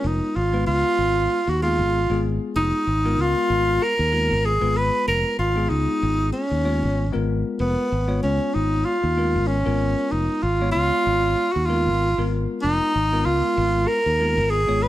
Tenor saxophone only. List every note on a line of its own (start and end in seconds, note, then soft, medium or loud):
0.06 0.37 D#4 medium
0.36 0.66 F4 medium
0.67 1.51 F4 loud
1.49 1.62 F#4 medium
1.62 2.26 F4 medium
2.56 3.23 D#4 medium
3.21 3.84 F4 loud
3.83 4.47 A#4 medium
4.45 4.78 G#4 medium
4.77 5.07 B4 loud
5.08 5.37 A#4 medium
5.39 5.71 F4 medium
5.69 6.32 D#4 loud
6.33 7.24 C#4 medium
7.60 8.19 B3 medium
8.23 8.55 C#4 medium
8.54 8.87 D#4 medium
8.85 9.48 F4 medium
9.47 10.12 C#4 medium
10.11 10.44 D#4 medium
10.43 10.71 F4 medium
10.72 11.53 F4 loud
11.52 11.67 F#4 medium
11.66 12.35 F4 medium
12.62 13.27 D#4 medium
13.25 13.89 F4 medium
13.87 14.52 A#4 medium
14.50 14.84 G#4 medium
14.83 14.88 B4 loud